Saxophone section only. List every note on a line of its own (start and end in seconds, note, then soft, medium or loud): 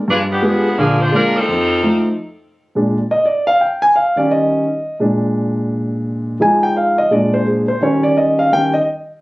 0.10 0.19 G#3 medium
0.10 0.19 D4 medium
0.10 0.19 F4 medium
0.10 0.19 B4 medium
0.30 0.42 F3 medium
0.30 0.42 B3 medium
0.30 0.42 D4 medium
0.30 0.42 G4 medium
0.44 0.77 F3 medium
0.44 0.79 B3 medium
0.44 0.77 D4 medium
0.44 0.77 G#4 medium
0.78 0.99 F3 medium
0.78 0.99 A#3 medium
0.78 0.99 D4 medium
0.78 0.99 G#4 medium
1.01 1.13 G#3 medium
1.01 1.13 D4 medium
1.01 1.13 F4 medium
1.01 1.14 C5 medium
1.14 1.34 G#3 medium
1.14 1.34 D4 medium
1.14 1.34 F4 medium
1.14 1.34 A#4 loud
1.37 2.06 F3 medium
1.37 2.06 C4 medium
1.37 2.06 D#4 medium
1.37 2.07 A4 medium